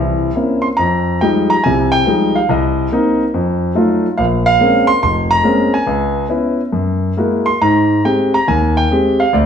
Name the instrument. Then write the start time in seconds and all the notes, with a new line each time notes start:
grand piano
Already playing: C2 E3 E5
0.35 A#3 C4 C#4 E4
0.62 C6
0.77 F2 A#5
1.21 F3 G3 G#3 D#4 G5
1.50 A#5
1.64 C2 C3 G#5
1.92 G5
2.07 F3 G3 G#3 D#4
2.35 F5
2.49 C2 D#5
2.92 A#3 C4 D#4
3.34 F2
3.75 F#3 A3 D#4 F4
4.17 A#1 F5
4.46 F5
4.60 G#3 A#3 C4 C#4
4.87 C6
5.03 F1 C6
5.31 A#5
5.43 G#3 A#3 C4 C#4
5.74 G#5
5.87 C#2
6.29 B3 C#4 E4
6.72 F#2
7.17 G#3 A#3 E4 F#4
7.46 C6
7.62 G#2 A#5
8.04 G#3 C4 G4 G5
8.34 A#5
8.48 D#2 G#5
8.77 G5
8.91 G#3 C4 G4
9.20 F5
9.33 D2 D5